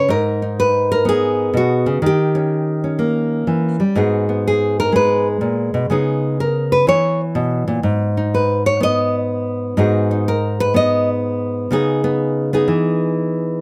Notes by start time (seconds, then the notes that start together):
0.09 G#2 A#4
0.42 D#4
0.60 B4
0.92 A#4
1.05 B3 G#4
1.54 B2 F#4
1.86 C#3
2.02 D#3
2.06 G4
2.35 C#4
2.84 C#4
2.99 A#3
3.47 E3
3.80 G3
3.95 G#2 B3 F#4 G#4
4.29 B3
4.47 G#4
4.80 A#4
4.92 G#3 B4
5.41 A#2
5.74 B2
5.90 C#3 B3 D#4 G#4
6.40 A#4
6.72 B4
6.87 E3 C#5
7.35 B2
7.68 A#2
7.83 G#2
8.17 D#4
8.34 B4
8.66 C#5
8.80 B3 D#5
9.77 G#2 D#4 F#4 G#4
10.11 D#4
10.28 A#4
10.60 B4
10.74 B3 D#5
11.71 C#3 B3 D#4 G#4
12.04 B3
12.53 B3 D#4 G#4
12.68 E3